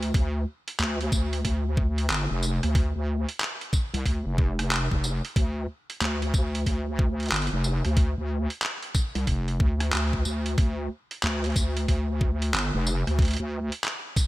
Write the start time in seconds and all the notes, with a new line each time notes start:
Already playing: D2
0.03 closed hi-hat
0.14 D2, kick, closed hi-hat
0.68 closed hi-hat
0.79 D2, clap, closed hi-hat
1.01 closed hi-hat
1.12 D2, kick, tambourine
1.33 closed hi-hat
1.45 D2, kick, closed hi-hat
1.77 kick
1.98 closed hi-hat
2.10 G1, clap, closed hi-hat
2.31 F1
2.43 tambourine
2.63 D2, cross-stick, closed hi-hat
2.75 kick, closed hi-hat
2.96 D2
3.29 closed hi-hat
3.40 cross-stick, clap, closed hi-hat
3.61 closed hi-hat
3.73 kick, tambourine
3.94 C2, closed hi-hat
4.05 D2, kick, closed hi-hat
4.26 F1
4.38 kick
4.59 cross-stick, closed hi-hat
4.71 clap, closed hi-hat
4.91 F1, kick
5.04 tambourine
5.25 closed hi-hat
5.36 D2, kick, closed hi-hat
5.90 closed hi-hat
6.01 D2, clap, closed hi-hat
6.22 closed hi-hat
6.34 D2, kick, tambourine
6.55 closed hi-hat
6.66 D2, kick, closed hi-hat
6.99 kick
7.20 closed hi-hat
7.23 closed hi-hat
7.26 closed hi-hat
7.29 G1, clap, closed hi-hat
7.32 closed hi-hat
7.37 closed hi-hat
7.42 closed hi-hat
7.47 closed hi-hat
7.52 F1
7.64 tambourine
7.85 D2, cross-stick, closed hi-hat
7.97 kick, closed hi-hat
8.18 D2
8.50 closed hi-hat
8.62 cross-stick, clap, closed hi-hat
8.83 closed hi-hat
8.95 kick, tambourine
9.15 C2, closed hi-hat
9.27 F1, kick, closed hi-hat
9.48 closed hi-hat
9.60 D2, kick
9.80 cross-stick, closed hi-hat
9.93 D2, clap, closed hi-hat
10.13 kick
10.25 D2, tambourine
10.46 closed hi-hat
10.58 D2, kick, closed hi-hat
11.11 closed hi-hat
11.23 D2, clap, closed hi-hat
11.44 closed hi-hat
11.46 closed hi-hat
11.50 closed hi-hat
11.52 closed hi-hat
11.54 D2, kick, closed hi-hat, tambourine
11.77 closed hi-hat
11.88 D2, kick, closed hi-hat
12.21 kick
12.42 closed hi-hat
12.54 G1, clap, closed hi-hat
12.74 F1
12.87 tambourine
13.07 D2, cross-stick, closed hi-hat
13.19 kick, closed hi-hat
13.22 closed hi-hat
13.25 closed hi-hat
13.28 closed hi-hat
13.31 closed hi-hat
13.33 closed hi-hat
13.37 D2, closed hi-hat
13.72 closed hi-hat
13.84 cross-stick, clap, closed hi-hat
14.16 kick, tambourine